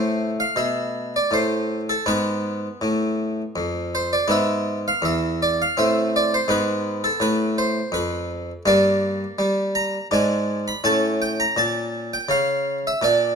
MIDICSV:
0, 0, Header, 1, 2, 480
1, 0, Start_track
1, 0, Tempo, 744417
1, 1333, Time_signature, 3, 2, 24, 8
1, 3246, Tempo, 724638
1, 7566, Tempo, 740741
1, 8730, End_track
2, 0, Start_track
2, 0, Title_t, "Harpsichord"
2, 0, Program_c, 0, 6
2, 0, Note_on_c, 0, 45, 60
2, 0, Note_on_c, 0, 57, 41
2, 0, Note_on_c, 0, 72, 83
2, 192, Note_off_c, 0, 72, 0
2, 258, Note_on_c, 0, 77, 88
2, 266, Note_off_c, 0, 45, 0
2, 363, Note_on_c, 0, 47, 50
2, 368, Note_on_c, 0, 76, 70
2, 377, Note_off_c, 0, 77, 0
2, 731, Note_off_c, 0, 76, 0
2, 749, Note_on_c, 0, 74, 77
2, 751, Note_off_c, 0, 47, 0
2, 845, Note_on_c, 0, 45, 54
2, 861, Note_off_c, 0, 74, 0
2, 861, Note_on_c, 0, 72, 65
2, 1163, Note_off_c, 0, 72, 0
2, 1221, Note_on_c, 0, 69, 73
2, 1232, Note_off_c, 0, 45, 0
2, 1296, Note_off_c, 0, 57, 0
2, 1329, Note_on_c, 0, 59, 43
2, 1330, Note_on_c, 0, 44, 61
2, 1337, Note_off_c, 0, 69, 0
2, 1342, Note_on_c, 0, 71, 86
2, 1719, Note_off_c, 0, 44, 0
2, 1815, Note_on_c, 0, 45, 62
2, 2200, Note_off_c, 0, 45, 0
2, 2293, Note_on_c, 0, 41, 50
2, 2361, Note_off_c, 0, 71, 0
2, 2546, Note_on_c, 0, 72, 90
2, 2660, Note_off_c, 0, 72, 0
2, 2663, Note_on_c, 0, 74, 68
2, 2675, Note_off_c, 0, 41, 0
2, 2745, Note_off_c, 0, 59, 0
2, 2757, Note_on_c, 0, 59, 46
2, 2759, Note_on_c, 0, 44, 64
2, 2777, Note_off_c, 0, 74, 0
2, 2779, Note_on_c, 0, 76, 104
2, 3079, Note_off_c, 0, 76, 0
2, 3145, Note_off_c, 0, 44, 0
2, 3146, Note_on_c, 0, 77, 90
2, 3238, Note_on_c, 0, 40, 60
2, 3257, Note_off_c, 0, 77, 0
2, 3257, Note_on_c, 0, 76, 85
2, 3496, Note_off_c, 0, 76, 0
2, 3505, Note_on_c, 0, 74, 87
2, 3618, Note_off_c, 0, 74, 0
2, 3629, Note_off_c, 0, 40, 0
2, 3632, Note_on_c, 0, 77, 75
2, 3697, Note_off_c, 0, 59, 0
2, 3735, Note_on_c, 0, 60, 47
2, 3739, Note_on_c, 0, 45, 57
2, 3742, Note_off_c, 0, 77, 0
2, 3745, Note_on_c, 0, 76, 75
2, 3978, Note_off_c, 0, 76, 0
2, 3993, Note_on_c, 0, 74, 106
2, 4101, Note_off_c, 0, 74, 0
2, 4112, Note_on_c, 0, 72, 78
2, 4118, Note_off_c, 0, 45, 0
2, 4184, Note_off_c, 0, 60, 0
2, 4205, Note_on_c, 0, 44, 73
2, 4210, Note_on_c, 0, 59, 50
2, 4220, Note_off_c, 0, 72, 0
2, 4220, Note_on_c, 0, 71, 95
2, 4571, Note_off_c, 0, 71, 0
2, 4575, Note_on_c, 0, 69, 89
2, 4588, Note_off_c, 0, 44, 0
2, 4682, Note_on_c, 0, 45, 70
2, 4690, Note_off_c, 0, 69, 0
2, 4690, Note_on_c, 0, 71, 97
2, 4928, Note_off_c, 0, 71, 0
2, 4934, Note_on_c, 0, 72, 84
2, 5068, Note_off_c, 0, 45, 0
2, 5158, Note_on_c, 0, 41, 66
2, 5170, Note_on_c, 0, 71, 80
2, 5171, Note_off_c, 0, 72, 0
2, 5409, Note_off_c, 0, 71, 0
2, 5547, Note_off_c, 0, 41, 0
2, 5621, Note_off_c, 0, 59, 0
2, 5645, Note_on_c, 0, 43, 77
2, 5645, Note_on_c, 0, 58, 54
2, 5658, Note_on_c, 0, 74, 102
2, 6028, Note_off_c, 0, 43, 0
2, 6128, Note_on_c, 0, 55, 63
2, 6371, Note_off_c, 0, 74, 0
2, 6371, Note_on_c, 0, 82, 111
2, 6513, Note_off_c, 0, 55, 0
2, 6575, Note_off_c, 0, 82, 0
2, 6580, Note_off_c, 0, 58, 0
2, 6610, Note_on_c, 0, 62, 45
2, 6612, Note_on_c, 0, 44, 65
2, 6626, Note_on_c, 0, 80, 92
2, 6926, Note_off_c, 0, 80, 0
2, 6984, Note_on_c, 0, 83, 108
2, 6996, Note_off_c, 0, 44, 0
2, 7064, Note_off_c, 0, 62, 0
2, 7092, Note_on_c, 0, 45, 82
2, 7092, Note_on_c, 0, 61, 54
2, 7097, Note_off_c, 0, 83, 0
2, 7098, Note_on_c, 0, 81, 120
2, 7298, Note_off_c, 0, 81, 0
2, 7342, Note_on_c, 0, 79, 101
2, 7455, Note_off_c, 0, 79, 0
2, 7462, Note_on_c, 0, 82, 112
2, 7475, Note_off_c, 0, 45, 0
2, 7572, Note_on_c, 0, 46, 81
2, 7576, Note_off_c, 0, 82, 0
2, 7582, Note_on_c, 0, 81, 99
2, 7932, Note_off_c, 0, 81, 0
2, 7941, Note_on_c, 0, 79, 82
2, 7952, Note_off_c, 0, 46, 0
2, 8039, Note_on_c, 0, 49, 71
2, 8053, Note_off_c, 0, 79, 0
2, 8054, Note_on_c, 0, 77, 97
2, 8358, Note_off_c, 0, 77, 0
2, 8419, Note_on_c, 0, 76, 105
2, 8428, Note_off_c, 0, 49, 0
2, 8504, Note_off_c, 0, 61, 0
2, 8512, Note_on_c, 0, 46, 76
2, 8518, Note_on_c, 0, 62, 53
2, 8527, Note_on_c, 0, 74, 113
2, 8534, Note_off_c, 0, 76, 0
2, 8730, Note_off_c, 0, 46, 0
2, 8730, Note_off_c, 0, 62, 0
2, 8730, Note_off_c, 0, 74, 0
2, 8730, End_track
0, 0, End_of_file